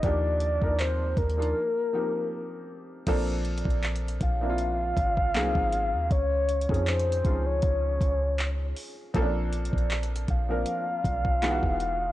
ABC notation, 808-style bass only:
X:1
M:4/4
L:1/16
Q:"Swing 16ths" 1/4=79
K:Bb
V:1 name="808-style bass" clef=bass
E,,3 E,,3 E,,2 z8 | B,,,3 B,,,3 B,,,4 _A,,,2 C,, A,,,2 E,, | _D,,3 F,,3 D,,2 D,,2 D,,4 z2 | B,,,3 B,,,3 B,,,2 z2 _C,,3 =E,,,3 |]